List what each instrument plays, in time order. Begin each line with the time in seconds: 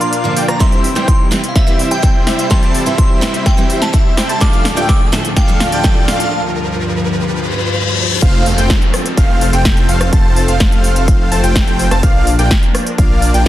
Already playing: analog synth pad A#2 F3 D4, supersaw synth A#3 D4 F4 D5 F5, analog synth lead F5, riser
0.01 synth bell C6, closed hi-hat
0.13 closed hi-hat
0.24 steel-string acoustic guitar D3 F3 A#3 F4
0.36 supersaw synth A#3 D4 F4 D5 G5, analog synth lead G5, open hi-hat
0.48 supersaw synth A#3 D4 F4 D5 A#5, analog synth lead A#5, synth bell A#5, cross-stick, closed hi-hat
0.60 analog synth pad C3 G3 E4, steel-string acoustic guitar E3 G3 C4 G4, supersaw synth G3 C4 E4 C5 E5, analog synth lead E5, synth bell C6, kick, snare, closed hi-hat
0.72 closed hi-hat
0.84 open hi-hat
0.95 steel-string acoustic guitar E3 G3 C4 G4, supersaw synth G3 C4 E4 C5 G5, analog synth lead G5, snare, closed hi-hat
1.08 synth bell C6, kick, closed hi-hat
1.31 steel-string acoustic guitar E3 G3 C4 G4, snare, open hi-hat
1.44 closed hi-hat
1.49 synth bell F5
1.55 supersaw synth G3 C4 E4 C5 E5, analog synth lead E5, synth bell E5, kick, snare, closed hi-hat
1.67 steel-string acoustic guitar E3 G3 C4 G4, closed hi-hat
1.79 open hi-hat
1.91 supersaw synth G3 C4 E4 C5 G5, analog synth lead G5, synth bell G5, closed hi-hat
2.02 steel-string acoustic guitar E3 G3 C4 E4, kick, closed hi-hat
2.27 supersaw synth G3 C4 E4 C5 E5, analog synth lead E5, snare, open hi-hat
2.39 synth bell G5, closed hi-hat
2.50 steel-string acoustic guitar E3 G3 C4 G4, supersaw synth G3 C4 E4 A5, analog synth lead A5, synth bell C6, kick, snare, closed hi-hat
2.63 closed hi-hat
2.74 open hi-hat
2.86 steel-string acoustic guitar E3 G3 C4 G4, supersaw synth G3 C4 E4 C5 E5, analog synth lead E5, closed hi-hat
2.98 synth bell C6, kick, closed hi-hat
3.21 steel-string acoustic guitar E3 G3 C4 G4, snare, open hi-hat
3.34 closed hi-hat
3.46 synth bell G5, kick, snare, closed hi-hat
3.57 steel-string acoustic guitar E3 G3 C4 G4, closed hi-hat
3.70 open hi-hat
3.82 synth bell A5, snare, closed hi-hat
3.93 steel-string acoustic guitar E3 G3 C4 E4, kick, closed hi-hat
4.17 supersaw synth G3 C4 E4 C5 G5, analog synth lead G5, snare, open hi-hat
4.29 supersaw synth G3 C4 E4 C5 A5, analog synth lead A5, synth bell A5, closed hi-hat
4.40 analog synth pad D2 A2 F3, steel-string acoustic guitar F3 A3 D4 A4, supersaw synth A3 D4 F4 D5 F5, analog synth lead F5, synth bell D6, kick, snare, closed hi-hat
4.53 closed hi-hat
4.65 snare, open hi-hat
4.76 steel-string acoustic guitar F3 A3 D4 A4, supersaw synth A3 D4 F4 D5 G5, analog synth lead G5, closed hi-hat
4.82 synth bell E6
4.89 synth bell D6, kick, snare, closed hi-hat
5.12 steel-string acoustic guitar F3 A3 D4 A4, snare, open hi-hat
5.25 closed hi-hat
5.36 supersaw synth A3 D4 F4 D5 F5, analog synth lead F5, synth bell G5, kick, snare, closed hi-hat
5.48 steel-string acoustic guitar F3 A3 D4 A4, closed hi-hat
5.60 snare, open hi-hat
5.72 supersaw synth A3 D4 F4 D5 G5, analog synth lead G5, synth bell A5, closed hi-hat
5.84 steel-string acoustic guitar F3 A3 D4 G4, kick, snare, closed hi-hat
6.08 supersaw synth A3 D4 F4 D5 F5, analog synth lead F5, snare, open hi-hat
6.20 synth bell A5, closed hi-hat
6.32 analog synth pad G2
7.27 reverse cymbal
8.22 detuned saw bass F1, analog synth pad F3 C4 A4, supersaw synth A3 C4 F4 C5 F5, analog synth lead F5, kick, closed hi-hat, crash, downlifter
8.46 open hi-hat
8.58 detuned saw bass F1, supersaw synth A3 C4 F4 C5 G5, analog synth lead G5, closed hi-hat
8.70 kick, snare, closed hi-hat
8.82 closed hi-hat
8.94 cross-stick, open hi-hat
9.06 closed hi-hat
9.17 detuned saw bass F1, supersaw synth A3 C4 F4 C5 F5, analog synth lead F5, kick, closed hi-hat
9.41 open hi-hat
9.53 detuned saw bass F1, supersaw synth A3 C4 F4 C5 G5, analog synth lead G5, closed hi-hat
9.65 kick, snare, closed hi-hat
9.77 closed hi-hat
9.89 detuned saw bass F1, supersaw synth A3 C4 F4 C5 F5, analog synth lead F5, open hi-hat
10.01 cross-stick, closed hi-hat
10.13 detuned saw bass F1, supersaw synth A3 C4 F4 C5 A5, analog synth lead A5, kick, closed hi-hat
10.36 open hi-hat
10.48 detuned saw bass F1, supersaw synth A3 C4 F4 C5 F5, analog synth lead F5, closed hi-hat
10.60 kick, snare, closed hi-hat
10.72 closed hi-hat
10.84 open hi-hat
10.96 closed hi-hat
11.08 kick, closed hi-hat
11.32 detuned saw bass F1, supersaw synth A3 C4 F4 C5 A5, analog synth lead A5, open hi-hat
11.43 detuned saw bass F1, supersaw synth A3 C4 F4 C5 G5, analog synth lead G5, closed hi-hat
11.56 kick, snare, closed hi-hat
11.68 closed hi-hat
11.79 open hi-hat
11.91 detuned saw bass F1, supersaw synth A3 C4 F4 C5 A5, analog synth lead A5, cross-stick, closed hi-hat
12.03 detuned saw bass A#1, analog synth pad F3 A#3 D4, supersaw synth A#3 D4 F4 D5 F5, analog synth lead F5, kick, closed hi-hat
12.27 open hi-hat
12.39 detuned saw bass A#1, supersaw synth A#3 D4 F4 D5 G5, analog synth lead G5, closed hi-hat
12.51 kick, snare, closed hi-hat
12.63 closed hi-hat
12.75 cross-stick, open hi-hat
12.87 closed hi-hat
12.98 detuned saw bass A#1, supersaw synth A#3 D4 F4 D5 F5, analog synth lead F5, kick, closed hi-hat
13.22 open hi-hat
13.34 detuned saw bass A#1, supersaw synth A#3 D4 F4 D5 G5, analog synth lead G5, closed hi-hat